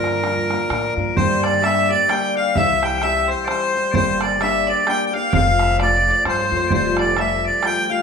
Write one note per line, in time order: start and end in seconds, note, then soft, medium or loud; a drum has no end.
0.00 0.24 G2 medium
0.00 0.55 G2 loud
0.00 2.55 D3 medium
0.00 0.21 F3 medium
0.00 0.24 A#3 medium
0.00 0.24 D4 medium
0.00 0.25 F4 medium
0.00 0.94 A#4 loud
0.00 1.17 A#4 medium
0.00 1.90 A#4 medium
0.00 1.16 C5 medium
0.00 0.96 D5 medium
0.04 bodhran medium
0.23 0.50 F3 medium
0.23 0.51 A#3 medium
0.23 0.50 D4 medium
0.23 0.49 F4 medium
0.23 bodhran medium
0.37 bodhran soft
0.50 0.69 F3 soft
0.50 0.70 A#3 soft
0.50 0.71 D4 soft
0.50 0.70 F4 soft
0.50 bodhran medium
0.70 0.94 A2 medium
0.70 0.97 F3 medium
0.70 0.97 A#3 medium
0.70 0.96 D4 medium
0.70 0.95 F4 medium
0.70 bodhran medium
0.96 1.15 G2 medium
0.96 1.17 F3 soft
0.96 1.17 A#3 soft
0.96 1.17 D4 soft
0.96 1.17 F4 soft
1.17 1.94 G2 loud
1.17 1.62 G3 medium
1.17 1.63 A#3 medium
1.17 1.64 D4 medium
1.17 1.65 G4 medium
1.17 1.43 C5 loud
1.17 3.15 C5 loud
1.17 1.45 C5 loud
1.17 bodhran medium
1.43 1.90 D5 medium
1.43 1.62 D5 medium
1.43 1.65 D5 medium
1.43 bodhran medium
1.62 1.90 G3 medium
1.62 1.90 A#3 medium
1.62 1.91 D4 medium
1.62 1.89 G4 medium
1.62 1.88 E5 medium
1.62 2.43 E5 medium
1.62 1.91 E5 loud
1.62 bodhran medium
1.88 2.11 D4 soft
1.88 2.10 G4 medium
1.88 2.09 D5 medium
1.88 3.75 D5 medium
1.88 2.11 D5 loud
1.93 2.09 A#3 soft
2.09 2.56 G3 medium
2.09 2.56 A#3 medium
2.09 2.57 D4 medium
2.09 2.57 G4 medium
2.09 2.82 G5 loud
2.09 2.36 G5 medium
2.09 2.35 G5 loud
2.09 bodhran medium
2.36 2.55 F5 loud
2.36 2.63 F5 loud
2.36 2.57 F5 loud
2.55 3.33 C2 loud
2.55 3.02 C3 medium
2.55 3.01 E3 medium
2.55 3.02 G3 medium
2.55 3.03 C4 medium
2.55 3.05 G4 medium
2.55 2.98 E5 loud
2.55 2.84 E5 loud
2.55 3.02 E5 loud
2.55 bodhran medium
2.83 4.38 G5 medium
2.83 3.03 G5 loud
2.83 bodhran medium
2.98 3.47 E3 medium
2.98 3.29 E5 medium
2.98 3.02 G5 medium
2.98 bodhran medium
3.03 3.48 G3 medium
3.03 3.49 C4 medium
3.03 3.50 G4 medium
3.03 4.41 E5 loud
3.03 3.30 E5 loud
3.28 3.47 C5 medium
3.28 3.45 C5 medium
3.28 3.48 C5 medium
3.45 3.75 E3 medium
3.45 3.94 C5 medium
3.45 3.92 C5 medium
3.45 3.48 D5 medium
3.45 bodhran medium
3.49 3.76 G3 medium
3.49 3.75 C4 medium
3.49 3.73 G4 medium
3.49 3.94 C5 loud
3.76 3.93 G3 soft
3.76 3.95 C4 soft
3.92 4.72 G1 loud
3.92 4.39 G3 medium
3.92 4.40 A#3 medium
3.92 5.92 C5 loud
3.92 4.22 C5 medium
3.92 3.96 D5 medium
3.92 bodhran medium
3.96 4.41 D4 medium
3.96 4.42 G4 medium
3.96 4.23 C5 loud
4.20 4.67 D5 medium
4.20 4.42 D5 medium
4.20 bodhran medium
4.40 4.85 G3 medium
4.40 4.86 A#3 medium
4.40 4.87 D4 medium
4.40 4.88 G4 medium
4.40 5.19 E5 medium
4.40 4.70 E5 medium
4.40 4.69 E5 loud
4.40 bodhran medium
4.67 5.79 D5 medium
4.67 4.88 D5 medium
4.67 4.89 D5 medium
4.86 5.13 G3 medium
4.86 5.14 A#3 medium
4.86 5.13 D4 medium
4.86 5.12 G4 medium
4.86 6.42 G5 medium
4.86 5.05 G5 loud
4.86 5.14 G5 medium
4.86 bodhran medium
5.07 5.13 G5 medium
5.13 5.34 A#3 soft
5.13 5.34 D4 soft
5.13 5.33 G4 soft
5.13 5.33 F5 medium
5.13 5.30 F5 loud
5.13 5.33 F5 loud
5.30 6.10 F1 loud
5.30 5.78 F3 medium
5.30 5.80 C4 medium
5.30 5.61 F5 medium
5.30 7.00 F5 loud
5.30 5.34 G5 medium
5.30 bodhran loud
5.35 5.81 A3 medium
5.35 5.82 F4 medium
5.35 5.77 F5 loud
5.59 5.81 E5 medium
5.59 bodhran medium
5.79 6.24 F3 medium
5.79 6.25 A3 medium
5.79 6.25 C4 medium
5.79 6.27 F4 medium
5.79 5.96 D5 medium
5.79 6.26 D5 medium
5.79 6.24 D5 loud
5.79 bodhran medium
5.96 6.10 D5 medium
6.10 6.98 D5 medium
6.24 6.49 G2 loud
6.24 6.51 F3 medium
6.24 6.52 A3 medium
6.24 6.52 C4 medium
6.24 6.50 F4 medium
6.24 6.40 C5 medium
6.24 6.68 C5 medium
6.24 bodhran medium
6.29 6.72 C5 loud
6.41 6.56 C5 medium
6.52 6.69 F2 medium
6.52 6.72 A3 soft
6.52 6.72 C4 soft
6.52 6.71 F4 soft
6.57 6.72 C5 medium
6.68 7.48 F1 loud
6.68 7.17 F2 medium
6.68 6.72 D5 medium
6.68 bodhran medium
6.72 7.18 C3 medium
6.72 7.17 F3 medium
6.72 7.18 G3 medium
6.72 7.18 A3 medium
6.72 7.19 F4 medium
6.72 6.98 C5 medium
6.72 8.02 C5 medium
6.72 6.97 C5 loud
6.97 7.17 D5 medium
6.97 8.02 D5 medium
6.97 7.19 D5 medium
6.97 bodhran medium
7.17 7.63 F3 medium
7.17 7.64 G3 medium
7.17 7.64 A3 medium
7.17 7.66 F4 medium
7.17 7.44 E5 medium
7.17 7.96 E5 medium
7.17 7.46 E5 loud
7.17 bodhran medium
7.44 7.65 D5 medium
7.63 7.90 F3 medium
7.63 7.90 G3 medium
7.63 7.90 A3 medium
7.63 7.88 F4 medium
7.63 8.02 G5 medium
7.63 7.91 G5 medium
7.63 7.92 G5 loud
7.63 bodhran medium
7.89 8.02 F3 soft
7.89 8.02 G3 soft
7.89 8.02 A3 soft
7.89 8.02 F4 medium
7.89 8.02 F5 medium
7.89 8.02 F5 loud
7.89 8.02 F5 medium